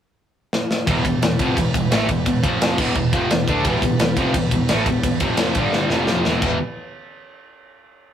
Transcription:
0.53 snare medium
0.71 snare medium
0.87 1.04 E1 medium
0.87 1.04 E2 loud
0.87 1.04 B2 loud
0.87 2.43 E3 medium
0.87 1.05 E3 loud
0.87 2.42 B3 medium
0.87 2.42 G4 medium
0.87 2.42 B4 medium
0.87 kick loud
0.87 ride loud
1.05 1.21 E1 medium
1.05 1.19 E2 medium
1.05 1.19 B2 medium
1.05 kick medium
1.05 ride medium
1.21 1.38 E1 medium
1.21 1.36 E2 medium
1.21 1.36 B2 medium
1.21 snare loud
1.21 ride loud
1.39 1.56 F1 medium
1.39 1.57 F2 medium
1.39 1.57 C3 loud
1.39 1.57 F3 loud
1.39 kick loud
1.39 ride medium
1.57 1.73 E1 medium
1.57 1.71 E2 medium
1.57 1.71 B2 medium
1.57 kick medium
1.57 ride loud
1.74 1.90 E1 medium
1.74 1.88 E2 medium
1.74 1.89 B2 medium
1.74 kick loud
1.74 ride medium
1.91 2.08 A1 loud
1.91 2.09 A2 medium
1.91 2.09 E3 medium
1.91 2.09 A3 loud
1.91 snare loud
1.91 ride loud
2.09 2.25 E1 medium
2.09 2.23 E2 medium
2.09 2.23 B2 medium
2.09 kick loud
2.09 ride medium
2.26 2.42 E1 medium
2.26 2.40 E2 medium
2.26 2.40 B2 medium
2.26 kick medium
2.26 ride loud
2.43 2.76 F1 medium
2.43 2.78 F2 medium
2.43 2.78 C3 loud
2.43 2.78 C3 medium
2.43 2.78 F3 medium
2.43 2.78 F3 loud
2.43 2.78 F4 medium
2.43 2.78 C5 medium
2.43 kick loud
2.43 ride medium
2.62 snare loud
2.62 ride loud
2.78 2.95 E1 loud
2.78 2.95 E2 loud
2.78 2.96 B2 loud
2.78 5.19 E3 medium
2.78 2.96 E3 loud
2.78 5.19 B3 medium
2.78 5.19 G4 medium
2.78 5.19 B4 loud
2.78 kick loud
2.78 crash loud
2.95 3.12 E1 medium
2.95 3.10 E2 medium
2.95 3.10 B2 medium
2.95 kick medium
3.13 3.29 F1 loud
3.13 3.30 F2 medium
3.13 3.30 C3 loud
3.13 3.30 F3 loud
3.13 kick loud
3.13 ride medium
3.31 3.47 E1 medium
3.31 3.45 E2 medium
3.31 3.45 B2 medium
3.31 snare loud
3.31 ride loud
3.47 3.64 D2 loud
3.47 3.65 D3 loud
3.47 3.65 A3 loud
3.47 3.66 D4 loud
3.47 kick loud
3.47 ride medium
3.64 3.81 E1 medium
3.64 3.82 E2 loud
3.64 3.82 B2 loud
3.64 3.83 E3 loud
3.64 kick loud
3.64 ride loud
3.82 3.98 E1 medium
3.82 3.97 E2 medium
3.82 3.98 B2 medium
3.82 kick medium
3.82 ride medium
3.99 4.16 E1 medium
3.99 4.14 E2 medium
3.99 4.14 B2 medium
3.99 snare loud
3.99 ride loud
4.17 4.33 F1 loud
4.17 4.34 F2 medium
4.17 4.35 C3 medium
4.17 4.35 F3 loud
4.17 kick loud
4.17 ride medium
4.34 4.50 E1 medium
4.34 4.49 E2 medium
4.34 4.50 B2 medium
4.34 kick loud
4.34 ride loud
4.51 4.68 E1 medium
4.51 4.67 E2 medium
4.51 4.67 B2 medium
4.51 kick medium
4.51 ride medium
4.69 4.85 A1 loud
4.69 4.86 A2 medium
4.69 4.87 E3 medium
4.69 4.87 A3 loud
4.69 snare loud
4.69 ride loud
4.86 5.02 E1 medium
4.86 5.01 E2 medium
4.86 5.01 B2 medium
4.86 kick medium
4.86 ride medium
5.03 5.20 E1 medium
5.03 5.18 E2 medium
5.03 5.18 B2 medium
5.03 kick loud
5.03 ride loud
5.20 5.53 F1 medium
5.20 5.55 F2 medium
5.20 5.56 C3 medium
5.20 5.55 F3 medium
5.20 5.56 F3 loud
5.20 5.55 F4 medium
5.20 5.56 C5 medium
5.20 kick loud
5.20 ride medium
5.37 snare loud
5.37 ride loud
5.55 5.88 G1 medium
5.55 5.90 G2 medium
5.55 5.90 D3 medium
5.55 5.90 D3 loud
5.55 5.90 G3 medium
5.55 5.91 G3 loud
5.55 5.90 G4 medium
5.55 5.90 D5 medium
5.55 kick loud
5.55 ride medium
5.73 snare medium
5.90 6.23 F1 medium
5.90 6.25 F2 medium
5.90 6.25 C3 medium
5.90 6.25 F3 medium
5.90 6.25 F4 medium
5.90 6.25 C5 medium
5.90 snare medium
6.07 snare medium
6.25 6.41 E1 loud
6.25 6.41 E2 medium
6.25 6.42 B2 loud
6.25 6.40 E3 medium
6.25 6.43 E3 loud
6.25 6.40 B3 medium
6.25 6.40 G4 medium
6.25 6.40 B4 medium
6.25 snare medium
6.41 6.58 E1 medium
6.41 6.56 E2 medium
6.41 6.57 B2 loud
6.41 6.58 E3 medium
6.41 6.57 E3 loud
6.41 6.58 B3 medium
6.41 6.58 G4 medium
6.41 6.58 B4 medium
6.41 kick loud
6.41 crash medium

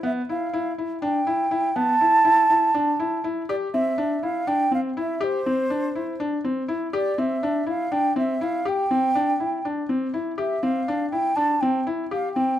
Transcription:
0.03 0.20 B3 medium
0.03 0.11 E5 medium
0.29 0.46 E4 medium
0.29 0.74 F5 medium
0.53 0.70 E4 medium
0.78 0.95 E4 medium
1.02 1.19 D4 medium
1.02 1.77 G5 medium
1.27 1.44 E4 medium
1.51 1.68 E4 medium
1.76 1.93 B3 medium
1.76 3.24 A5 loud
2.01 2.18 E4 medium
2.25 2.42 E4 medium
2.50 2.67 E4 medium
2.74 2.91 D4 medium
3.00 3.16 E4 medium
3.24 3.41 E4 medium
3.49 3.66 G4 medium
3.49 3.55 D5 medium
3.74 3.91 C4 medium
3.74 4.25 E5 medium
3.98 4.15 D4 medium
4.23 4.40 E4 medium
4.23 4.49 F5 medium
4.47 4.64 D4 medium
4.47 4.72 G5 loud
4.71 4.88 C4 medium
4.71 4.80 F5 medium
4.97 5.14 E4 medium
4.97 5.25 E5 medium
5.21 5.38 G4 medium
5.21 6.21 C5 medium
5.46 5.63 C4 medium
5.70 5.87 D4 medium
5.95 6.12 E4 medium
6.20 6.37 D4 medium
6.44 6.61 C4 medium
6.68 6.85 E4 medium
6.93 7.10 G4 medium
6.93 7.21 D5 medium
7.18 7.35 C4 medium
7.18 7.68 E5 medium
7.43 7.60 D4 medium
7.66 7.84 E4 medium
7.66 7.94 F5 medium
7.92 8.09 D4 medium
7.92 8.17 G5 loud
8.16 8.33 C4 medium
8.16 8.45 E5 medium
8.41 8.58 E4 medium
8.41 8.70 F5 medium
8.65 8.82 G4 medium
8.65 9.66 G5 medium
8.91 9.07 C4 medium
9.15 9.32 D4 medium
9.40 9.57 E4 medium
9.65 9.82 D4 medium
9.89 10.06 C4 medium
10.14 10.30 E4 medium
10.38 10.55 G4 medium
10.38 10.64 E5 medium
10.63 10.80 C4 medium
10.63 11.10 F5 medium
10.88 11.05 D4 medium
11.11 11.29 E4 medium
11.11 11.37 G5 medium
11.36 11.53 D4 medium
11.36 11.62 A5 loud
11.61 11.79 C4 medium
11.61 11.86 G5 medium
11.87 12.03 E4 medium
12.11 12.28 G4 medium
12.11 12.33 F5 medium
12.34 12.52 C4 medium
12.34 12.59 G5 medium

